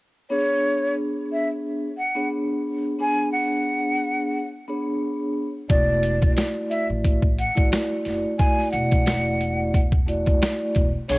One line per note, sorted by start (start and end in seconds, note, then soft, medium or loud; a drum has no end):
0.30 1.87 B3 medium
0.30 1.87 D4 medium
0.30 1.87 G#4 medium
0.30 0.94 C#5 loud
0.30 1.88 C#5 loud
1.32 1.49 E5 medium
1.98 2.29 F#5 medium
2.15 2.93 B3 medium
2.15 2.93 D4 medium
2.15 2.93 G#4 medium
2.15 2.94 C#5 medium
2.99 4.40 B3 medium
2.99 4.40 D4 medium
2.99 4.40 G#4 medium
2.99 4.41 C#5 medium
2.99 3.31 G#5 loud
3.32 4.49 F#5 medium
4.68 5.47 B3 medium
4.68 5.47 D4 medium
4.68 5.47 G#4 medium
4.68 5.48 C#5 loud
5.69 6.28 E1 loud
5.69 7.26 A3 medium
5.69 7.26 E4 medium
5.69 7.27 F#4 medium
5.69 6.33 D5 loud
5.69 7.27 D5 loud
5.69 kick loud
5.69 closed hi-hat medium
6.03 closed hi-hat medium
6.22 kick medium
6.22 closed hi-hat medium
6.37 snare loud
6.37 snare medium
6.37 closed hi-hat medium
6.70 6.87 E5 medium
6.70 closed hi-hat medium
6.90 7.48 A1 medium
7.05 kick medium
7.05 closed hi-hat medium
7.22 kick medium
7.39 7.69 F#5 medium
7.39 closed hi-hat medium
7.55 7.70 A1 medium
7.55 8.32 A3 medium
7.55 8.33 E4 medium
7.55 8.33 F#4 medium
7.55 8.33 D5 loud
7.55 kick medium
7.55 closed hi-hat soft
7.72 snare loud
7.72 closed hi-hat medium
8.05 8.22 F#1 medium
8.05 snare soft
8.05 closed hi-hat medium
8.39 9.79 A3 medium
8.39 9.80 E4 medium
8.39 9.80 F#4 medium
8.39 9.80 D5 loud
8.39 8.70 G#5 loud
8.39 kick loud
8.39 closed hi-hat medium
8.59 snare soft
8.72 10.38 E1 medium
8.72 9.88 F#5 medium
8.72 closed hi-hat medium
8.91 kick medium
8.91 closed hi-hat medium
9.06 snare loud
9.06 snare medium
9.06 closed hi-hat medium
9.41 closed hi-hat medium
9.74 kick medium
9.74 closed hi-hat medium
9.92 kick medium
10.06 10.86 A3 medium
10.06 10.86 E4 medium
10.06 10.86 F#4 medium
10.06 10.87 D5 medium
10.06 closed hi-hat medium
10.26 kick medium
10.26 closed hi-hat soft
10.42 snare loud
10.42 closed hi-hat medium
10.75 10.92 E1 medium
10.75 kick medium
10.75 closed hi-hat medium
11.09 11.19 B1 loud
11.09 11.19 B3 medium
11.09 11.19 D4 medium
11.09 11.19 G#4 medium
11.09 11.19 C#5 loud
11.09 closed hi-hat medium
11.09 crash medium